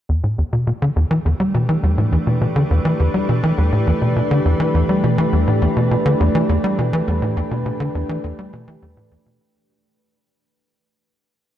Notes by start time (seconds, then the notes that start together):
0.09 E2 E3
0.18 G4
0.24 A2 A3
0.38 E2
0.53 B2
0.65 B2 D4
0.82 D3
0.96 E2
1.11 E3 B4
1.25 E2
1.40 G3
1.54 B2
1.69 E3
1.83 E2
1.98 A2
2.12 E2
2.27 B2
2.41 B2
2.56 D3
2.71 E2
2.85 E3
3.00 E2
3.14 G3
3.29 B2
3.43 E3
3.58 E2
3.73 A2
3.87 E2
4.02 B2
4.16 B2
4.31 D3
4.45 E2
4.60 E3
4.74 E2
4.89 G3
5.04 B2
5.18 E3
5.33 E2
5.47 A2
5.62 E2
5.77 B2
5.91 B2
6.06 D3
6.20 E2
6.35 E3
6.49 E2
6.64 G3
6.79 B2
6.93 E3
7.08 E2
7.22 A2
7.37 E2
7.51 B2
7.66 B2
7.80 D3
7.95 E2
8.09 E3
8.24 E2
8.39 G3
8.53 B2
8.68 E3
8.82 E2
8.97 A2
9.11 E2
9.26 B2